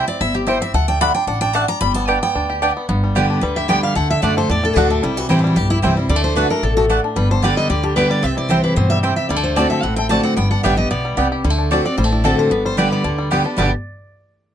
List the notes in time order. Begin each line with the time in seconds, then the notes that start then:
Already playing: E4
0.08 C4 D5
0.21 G1 E4 E5
0.35 G4
0.47 C4 E4 C5 G5
0.62 C4 E5
0.74 D2 A3 F#5
0.88 D4 G5
1.01 A3 D4 F#4 D5 F#5 B5
1.15 D4 G5
1.27 A1 D4 F#5
1.41 D4 G5
1.53 A3 D4 F#4 D5 F#5 A5
1.68 D4 A#5
1.81 G1 G3 B5
1.94 B3 A5
2.08 B3 D4 G4 D5 G5
2.23 B3 G5
2.35 D2 D4
2.50 G4
2.62 B3 D4 G4 D5 G5
2.77 B3
2.89 G1 G2 B3
3.04 G3
3.15 D3 G3 B3 G4 D5 G5
3.30 D4
3.41 D2 D3 G3 B4
3.56 G4 E5
3.68 D3 G3 B3 G4 D5 G5
3.83 G3 F5
3.95 D2 D3 A3 F#5
4.10 D3 E5
4.22 F#2 D3 A3 D4 F#4 D5 F#5
4.37 A3 C5
4.49 E2 A2 D4 D5
4.64 D4 A4
4.76 D2 D3 A3 D4 F#4 D5 F#5
4.90 A3 D4
5.03 C2 C3 G3 E4
5.17 E3 F#4
5.29 A1 E3 G3 C4 E4 C5 G5
5.39 D4
5.44 G3 F#4
5.56 B1 G2 G4
5.70 E4
5.82 C2 E3 G3 C4 E4 C5 G5
5.97 G3 C4 E4
6.09 D2 D3 G3 D5
6.16 A3
6.24 D4 C5
6.36 D3 A3 D4 F#4 B4 D5 F#5
6.49 A3 D4 F#4 A#4
6.63 A1 B2 D4 A4
6.77 A3 F#4
6.89 A2 A3 D4 F#4 D5 F#5
7.04 D4
7.16 G1 G2 G3 B4
7.31 D3 C5
7.42 D3 G3 B3 D4 G4 D5 G5
7.57 G3 D#5
7.70 D2 D3 G4 D5
7.83 D4 G4
7.96 D3 G3 B3 G4 B4 D5 G5
8.10 G3 D5
8.23 C2 C3 C4 E5
8.37 E4 D5
8.49 E3 G3 C4 E4 C5 G5
8.64 G4 B4
8.76 G2 B2 C4 C5
8.90 G3 E5
9.03 C3 C4 E4 C5 G5
9.16 G4 E5
9.29 D2 D3 G3 D5
9.36 A3
9.44 D4 C5
9.56 D3 A3 C4 F#4 D5 A5
9.70 A3 E5
9.83 A1 A2 C4 F#5
9.96 A3 G5
10.09 D3 A3 C4 D4 F#4 D5 A5
10.23 C4 F#5
10.37 G1 G2 B3 G5
10.51 D4 F#5
10.63 A1 D3 G3 B3 G4 D5 E5 G5
10.77 B3 G4 D#5
10.91 B1 B2 B3 D5
11.05 G3
11.17 C2 C3 B3 G4 D5 G5
11.32 G4
11.44 D2 D3 G3
11.50 A3
11.58 D4
11.71 D3 A3 C4 D4 F#4 D5 A5
11.85 C4 F#4 D5
11.98 A1 A2 G3 C5
12.04 A3
12.12 D4 E4
12.24 D3 A3 C4 F#4 A4 D5 A5
12.39 D4 C5
12.51 G1 G2 B3 B4
12.65 G3 C5
12.77 D3 G3 B3 G4 D5 G5
12.92 B3 D5
13.04 D2 D3 D4
13.19 G3
13.31 D3 G3 B3 G4 D5 G5
13.44 B3 D4 G4
13.57 G1 G2 B2 D3 G3 B3 G4 D5 G5
13.62 D4 G4